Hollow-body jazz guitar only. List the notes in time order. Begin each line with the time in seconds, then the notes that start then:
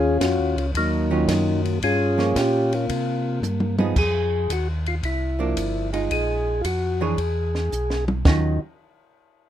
1.10 D#3 F#3 C#4 F4
2.18 F3 A#3 C#4
3.78 F3 B3 D#4 G#4
5.39 F3 A#3 D4
5.93 G#3 D#4 F4
7.01 E3 D4 G#4 C#5
8.25 D#3 F#3 C#4 F4